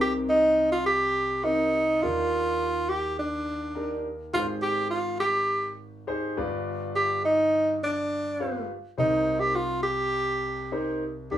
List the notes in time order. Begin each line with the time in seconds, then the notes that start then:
Already playing: C2 C3 C4 D#4 G4 A#4
0.01 G4
0.29 D#4
0.72 F4
0.86 G4
1.44 C4 D#4 G4 A#4
2.02 D#2 D#3 D4 D#4 F4 G4 A#4
2.89 G4
3.19 D4
3.75 D4 D#4 G4 A#4
4.33 G#1 G#2 D#4 F4 G4 G#4 B4
4.40 C5
4.62 G4
4.90 F4
5.20 G4
6.07 D#4 G4 G#4 C5
6.37 G1 G2 F4 G4 B4 D5
6.96 G4
7.25 D#4
7.84 D4
8.40 F4 G4 B4 F5
8.97 C2 C3 D#4 G4 A#4 C5
9.40 G4
9.56 F4
9.83 G4
10.72 D#4 G4 A#4 C5
11.31 D#2 D#3 D#4 G4 A#4 D5